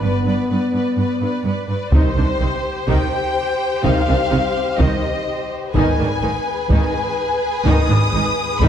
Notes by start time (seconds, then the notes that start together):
0.01 G1 G2 B3 B4 D5
0.05 B4
0.25 G2 B4 D5
0.50 G2 B4 D5
0.73 G2 B4 D5
0.97 G2 B4 D5
1.21 G2 B4 D5
1.45 G2 B4 D5
1.68 G2 B4 D5
1.92 C2 C3 D#3 C4 D#4 G4 C5, taiko
2.16 C2 C3 D#3 D4
2.40 C2 C3 D#3 D#4
2.87 C2 C3 D#3 C4 D#4 G5, taiko
3.83 C2 C3 D#3 C4 D#4 F5, taiko
4.08 C2 C3 D#3 D4
4.31 C2 C3 D#3 D#4
4.79 C2 C3 D#3 C4 D#4 D#5, taiko
5.75 G#1 G#2 D#3 B3 D#4 G#4 B4 G#5, taiko
5.99 G#1 G#2 D#3 D4
6.22 G#1 G#2 D#3 D#4
6.70 G#1 G#2 D#3 B3 D#4 G#5, taiko
7.65 G#1 G#2 D#3 B3 D#4 D#6, taiko
7.89 G#1 G#2 D#3 D4
8.14 G#1 G#2 D#3 D#4
8.62 G#1 G#2 D#3 B3 D#4 B5, taiko